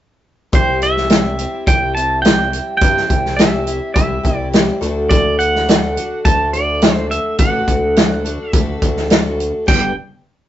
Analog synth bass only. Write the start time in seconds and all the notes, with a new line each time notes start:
0.53 C2
1.67 C2
2.82 G2
3.10 C2
3.95 C2
4.25 C2
4.81 D2
6.25 D2
7.39 A1
7.67 D2
8.53 D2
8.82 D2
9.68 G1